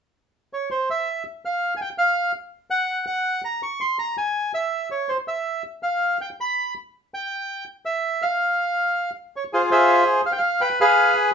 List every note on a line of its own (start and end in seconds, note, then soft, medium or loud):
0.53 0.69 C#5 medium
0.71 0.89 C5 medium
0.90 1.23 E5 medium
1.45 1.74 F5 medium
1.77 1.80 G#5 medium
1.82 1.89 G5 medium
1.98 2.32 F5 medium
2.70 3.05 F#5 medium
3.07 3.41 F#5 medium
3.45 3.61 A#5 medium
3.63 3.81 C#6 medium
3.81 3.98 C6 medium
3.99 4.16 A#5 medium
4.18 4.52 G#5 medium
4.54 4.89 E5 medium
4.91 5.10 C#5 medium
5.09 5.17 C5 medium
5.28 5.63 E5 medium
5.83 6.17 F5 medium
6.21 6.29 G5 medium
6.41 6.74 B5 medium
7.14 7.64 G5 medium
7.85 8.23 E5 medium
8.22 9.10 F5 medium
9.36 9.44 C#5 medium
9.53 10.04 F4 medium
9.53 9.70 G#4 medium
9.53 9.62 C5 medium
9.71 10.21 G#4 medium
9.71 10.21 C5 medium
9.71 10.05 E5 medium
10.26 10.32 F5 medium
10.32 10.39 G5 medium
10.38 10.61 F5 medium
10.61 10.79 B4 medium
10.61 10.69 G5 loud
10.81 11.31 G#4 medium
10.81 11.31 B4 medium
10.81 11.14 F5 medium